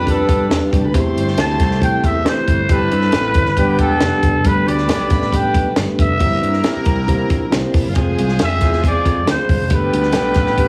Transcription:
Already playing: picked electric bass F2, horn section G3 D4 B4, tonewheel organ G3 B3 D4, violin section B4 B5
0.05 tine electric piano D4 G4 A#4, kick, closed hi-hat
0.10 trumpet A4, tine electric piano B4
0.29 picked electric bass G2, kick, closed hi-hat
0.49 picked electric bass E2, tine electric piano D4 G4 B4, snare, closed hi-hat
0.63 violin section F4 F5
0.70 picked electric bass C2, violin section G4 G5, kick, closed hi-hat
0.80 violin section A4 A5
0.84 picked electric bass D2, violin section B4 B5
0.93 picked electric bass E2, tine electric piano A3 C4 E4 G4 C5, tonewheel organ A3 C4 E4, horn section A3 G4 C5, violin section C5 C6, kick, closed hi-hat
1.16 picked electric bass G1, closed hi-hat
1.28 snare
1.36 picked electric bass D2, tine electric piano A3 C4 E4 G4 C5, trumpet A5, snare, closed hi-hat
1.60 picked electric bass C2, kick, snare, closed hi-hat
1.71 snare
1.79 tine electric piano A3 C4 E4 G4 C5, trumpet G5, kick, closed hi-hat
2.04 picked electric bass E2, trumpet E5, kick, closed hi-hat
2.24 picked electric bass E3, tine electric piano A3 C4 E4 G4 C5, trumpet C5, snare, closed hi-hat
2.48 picked electric bass G1, kick, closed hi-hat
2.68 picked electric bass G1, tonewheel organ G3 E4, tine electric piano C4 E4 G4, horn section C4 G4 E5, violin section A4 A5, trumpet B4, kick, closed hi-hat
2.91 picked electric bass G2, closed hi-hat
3.01 snare
3.12 picked electric bass A1, tine electric piano C4 E4 A4, snare, closed hi-hat
3.34 picked electric bass G1, kick, closed hi-hat
3.45 snare
3.56 picked electric bass G1, tine electric piano B3 D4 G4, horn section B3 G4 D5, tonewheel organ B3 D4, violin section G4 G5, kick, closed hi-hat
3.79 picked electric bass E1, trumpet A4, kick, closed hi-hat
4.01 picked electric bass F1, tine electric piano B3 D4 G4, snare, closed hi-hat
4.23 picked electric bass G1, kick, closed hi-hat
4.34 picked electric bass F1
4.44 picked electric bass G1, tonewheel organ G3 A3 B3, horn section G3 D4 B4, tine electric piano A3 B3 D4 G4 B4, violin section B4 B5, trumpet B4, kick, closed hi-hat
4.66 picked electric bass D2, trumpet D5, closed hi-hat
4.78 snare
4.88 picked electric bass B1, tine electric piano A3 B3 D4 G4 A4, trumpet D5, snare, closed hi-hat
4.94 tine electric piano B4
5.10 picked electric bass A1, kick, snare, closed hi-hat
5.22 snare
5.31 tine electric piano A3 B3 D4 G4 B4, kick, closed hi-hat
5.36 trumpet G5
5.54 picked electric bass B1, kick, closed hi-hat
5.75 picked electric bass G1, tine electric piano A3 B3 D4 G4 B4, snare, closed hi-hat
5.99 picked electric bass G1, trumpet E5, kick, closed hi-hat
6.09 picked electric bass F1
6.18 picked electric bass G1, tonewheel organ E3 A#3 C4, horn section G3 E4 A#4, tine electric piano A#3 C4 E4 G4 C5, violin section A#4 A#5, kick, closed hi-hat
6.42 picked electric bass G2, closed hi-hat
6.53 snare
6.62 tine electric piano A#3 C4 E4 G4 C5, snare, closed hi-hat
6.76 muted picked electric bass stroke
6.85 picked electric bass C2, kick, closed hi-hat
7.07 tine electric piano A#3 C4 E4 G4 C5, kick, closed hi-hat
7.30 picked electric bass A#1, kick, closed hi-hat
7.51 picked electric bass C2, tine electric piano A#3 C4 E4 G4 C5, snare, closed hi-hat
7.65 violin section C4 C5
7.71 picked electric bass F1, violin section D4 D5, kick, open hi-hat
7.81 violin section E4 E5
7.86 picked electric bass G1, violin section F4 F5
7.95 picked electric bass F1, horn section G#3 F4 C5, tonewheel organ G#3 C4 F4, tine electric piano C4 F4 G#4, violin section G#4 G#5, kick, closed hi-hat
8.18 picked electric bass C2, closed hi-hat
8.28 snare
8.39 picked electric bass F2, tine electric piano C4 F4 G4, snare, closed hi-hat
8.43 trumpet E5
8.61 picked electric bass E2, kick, snare, closed hi-hat
8.72 snare
8.83 tine electric piano C4 F4 G#4, kick, closed hi-hat
8.88 trumpet D5
9.05 picked electric bass F2, kick, closed hi-hat
9.27 picked electric bass D2, tine electric piano C4 F4 G#4, trumpet C5, snare, closed hi-hat
9.49 picked electric bass G1, kick, open hi-hat
9.60 picked electric bass F1
9.69 picked electric bass G1, tonewheel organ G3 A3 B3, tine electric piano A3 B3 D4 G4 B4, horn section B3 A4 D5, violin section G4 G5, kick, closed hi-hat
9.74 trumpet B4
9.93 picked electric bass D2, closed hi-hat
10.03 snare
10.12 picked electric bass B1, tine electric piano A3 B3 D4 G4 B4, snare, closed hi-hat
10.34 picked electric bass A1, kick, snare, closed hi-hat
10.46 snare
10.57 tine electric piano A3 B3 D4 G4 B4, kick, closed hi-hat

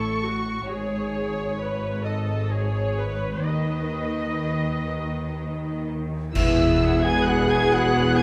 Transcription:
Already playing: double bass section A1, cello section A2, viola section A4, violin section C#6
0.25 viola section F#4
0.68 double bass section G#1, cello section G#2, viola section G#4, violin section C#5
1.61 viola section B4
2.05 viola section A4, violin section D#5
2.51 viola section G#4, violin section C#5
2.99 viola section B4
3.45 double bass section D#2, cello section D#3, violin section B4, viola section D#5
6.33 double bass section E1, cello section E2, viola section B3 G#4, french horn section E4, violin section B4 F#5 E6, flute E5, concert bass drum, crash
7.03 french horn section G#4, flute G#5, violin section G#6
7.26 french horn section F#4, flute F#5, violin section F#6
7.48 french horn section G#4, flute G#5, violin section G#6
7.70 french horn section F#4, flute F#5, violin section F#6
8.16 french horn section G#4, flute G#5, violin section G#6

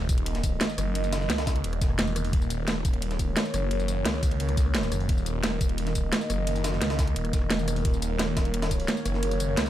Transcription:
Already playing: analog synth pad D#3 A#3 A#4 D#5, sub drop
0.09 detuned saw bass D#1, kick, closed hi-hat, ride, tambourine
0.18 closed hi-hat
0.26 closed hi-hat, ride
0.35 snare, closed hi-hat
0.44 kick, closed hi-hat, ride, tambourine
0.61 snare, closed hi-hat, ride
0.69 snare, tambourine
0.78 detuned saw bass F#1, cross-stick, closed hi-hat, ride, tambourine
0.95 closed hi-hat, ride
1.04 ride, tambourine
1.12 snare, closed hi-hat, ride, tambourine
1.21 snare
1.30 detuned saw bass C#2, snare, closed hi-hat, ride
1.38 snare, ride
1.47 kick, snare, closed hi-hat, ride, tambourine
1.56 closed hi-hat
1.64 detuned saw bass D#1, closed hi-hat, ride
1.73 cross-stick, closed hi-hat
1.81 detuned saw bass E1, kick, snare, closed hi-hat, ride, tambourine
1.90 cross-stick
1.99 snare, closed hi-hat, ride
2.07 tambourine
2.16 cross-stick, closed hi-hat, ride, tambourine
2.25 ride
2.33 detuned saw bass D#1, analog synth pad C#5, kick, closed hi-hat, ride
2.42 tambourine
2.50 closed hi-hat, ride, tambourine
2.68 snare, closed hi-hat, ride
2.85 detuned saw bass D#1, kick, closed hi-hat, ride, tambourine
2.94 closed hi-hat
3.02 closed hi-hat, ride
3.11 snare, closed hi-hat
3.19 kick, closed hi-hat, ride, tambourine
3.37 snare, closed hi-hat, ride
3.45 snare, tambourine
3.54 detuned saw bass F#1, cross-stick, closed hi-hat, ride, tambourine
3.71 closed hi-hat, ride
3.80 ride, tambourine
3.88 closed hi-hat, ride, tambourine
4.05 detuned saw bass C#2, snare, closed hi-hat, ride
4.14 snare
4.23 kick, closed hi-hat, ride, tambourine
4.31 closed hi-hat
4.40 detuned saw bass C#2, closed hi-hat, ride
4.49 cross-stick, closed hi-hat, ride
4.57 kick, snare, closed hi-hat, ride, tambourine
4.66 cross-stick
4.75 snare, closed hi-hat, ride
4.83 snare, tambourine
4.92 detuned saw bass F#1, cross-stick, closed hi-hat, ride, tambourine
5.00 ride
5.09 detuned saw bass D#1, analog synth pad D#5, kick, closed hi-hat, ride
5.18 tambourine
5.26 closed hi-hat, ride, tambourine
5.43 snare, closed hi-hat, ride
5.61 detuned saw bass D#1, kick, closed hi-hat, ride, tambourine
5.69 closed hi-hat
5.78 closed hi-hat, ride
5.87 snare, closed hi-hat
5.95 kick, closed hi-hat, ride, tambourine
6.12 snare, closed hi-hat, ride
6.21 snare, tambourine
6.30 detuned saw bass F#1, cross-stick, closed hi-hat, ride, tambourine
6.47 closed hi-hat, ride
6.56 ride, tambourine
6.64 snare, closed hi-hat, ride, tambourine
6.73 snare
6.82 detuned saw bass C#2, snare, closed hi-hat, ride
6.90 snare, ride
6.99 kick, snare, closed hi-hat, ride, tambourine
7.07 closed hi-hat
7.16 detuned saw bass D#1, closed hi-hat, ride
7.25 cross-stick, closed hi-hat
7.33 detuned saw bass E1, kick, snare, closed hi-hat, ride, tambourine
7.42 cross-stick
7.50 snare, closed hi-hat, ride
7.59 tambourine
7.68 cross-stick, closed hi-hat, ride, tambourine
7.76 ride
7.85 detuned saw bass D#1, analog synth pad C#5, kick, closed hi-hat, ride
7.94 tambourine
8.02 closed hi-hat, ride, tambourine
8.19 snare, closed hi-hat, ride
8.37 detuned saw bass D#1, kick, snare, closed hi-hat, ride, tambourine
8.45 closed hi-hat
8.54 closed hi-hat, ride
8.62 snare, closed hi-hat, ride
8.71 kick, snare, closed hi-hat, tambourine
8.80 ride
8.88 snare, closed hi-hat, ride
8.97 tambourine
9.06 detuned saw bass F#1, cross-stick, closed hi-hat, ride, tambourine
9.14 snare
9.23 closed hi-hat, ride
9.31 closed hi-hat, ride, tambourine
9.40 closed hi-hat, ride, tambourine
9.49 cross-stick
9.57 detuned saw bass C#2, snare, closed hi-hat, ride
9.66 snare, tambourine

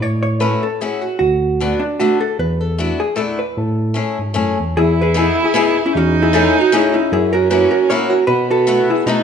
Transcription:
0.01 tine electric piano A2, hollow-body jazz guitar C#5
0.23 hollow-body jazz guitar C#5
0.40 steel-string acoustic guitar A3 C#4 E4 F#4, hollow-body jazz guitar B4
0.63 hollow-body jazz guitar A4
0.81 steel-string acoustic guitar A3 C#4 E4 F#4, hollow-body jazz guitar G#4
1.01 hollow-body jazz guitar F#4
1.19 tine electric piano D2, hollow-body jazz guitar F#4
1.60 steel-string acoustic guitar A3 B3 D4 F#4
1.80 hollow-body jazz guitar D4
2.00 steel-string acoustic guitar A3 B3 D4 F#4, hollow-body jazz guitar F#4
2.20 hollow-body jazz guitar A4
2.39 tine electric piano E2, hollow-body jazz guitar B4
2.61 hollow-body jazz guitar A4
2.78 steel-string acoustic guitar A3 B3 D4 E4, hollow-body jazz guitar F#4
3.00 hollow-body jazz guitar G#4
3.16 steel-string acoustic guitar A3 B3 D4 E4, hollow-body jazz guitar A4
3.39 hollow-body jazz guitar B4
3.57 tine electric piano A2, hollow-body jazz guitar A4
3.94 steel-string acoustic guitar A3 C#4 E4 G#4
4.19 tine electric piano G#2
4.34 tine electric piano F#2, steel-string acoustic guitar A3 C#4 E4 G#4
4.59 tine electric piano E2
4.77 tine electric piano E2, violin E4, hollow-body jazz guitar E4 G#4
5.01 hollow-body jazz guitar G#4 B4
5.14 steel-string acoustic guitar B3 D#4 E4 G#4, hollow-body jazz guitar A4
5.19 hollow-body jazz guitar E4
5.44 hollow-body jazz guitar E4 G#4
5.54 steel-string acoustic guitar B3 D#4 E4 G#4, hollow-body jazz guitar E4 G#4
5.86 hollow-body jazz guitar C#4 E4
5.93 tine electric piano E2, violin D#4
5.97 hollow-body jazz guitar C#4 F#4
6.22 hollow-body jazz guitar E4 G#4
6.33 steel-string acoustic guitar A3 C#4 E4 G#4, hollow-body jazz guitar E4 A4
6.60 hollow-body jazz guitar D#4 F#4
6.72 steel-string acoustic guitar A3 C#4 E4 G#4, hollow-body jazz guitar E4 G#4
6.94 hollow-body jazz guitar C#4 E4
7.12 tine electric piano F#2, violin C#4, hollow-body jazz guitar E4 G#4
7.33 hollow-body jazz guitar F#4 A#4
7.50 steel-string acoustic guitar A#3 C#4 E4 F#4, hollow-body jazz guitar F#4 B4
7.71 hollow-body jazz guitar F#4 A#4
7.89 steel-string acoustic guitar A#3 C#4 E4 F#4, hollow-body jazz guitar A#4 C#5
8.10 hollow-body jazz guitar F#4 A#4
8.27 tine electric piano B2, violin B3, hollow-body jazz guitar F#4 B4
8.50 hollow-body jazz guitar F#4 A4
8.67 steel-string acoustic guitar A3 B3 E4 F#4
8.90 hollow-body jazz guitar E4 G#4
9.06 tine electric piano B2, steel-string acoustic guitar A3 B3 D#4 F#4, hollow-body jazz guitar D#4 F#4, violin D#4

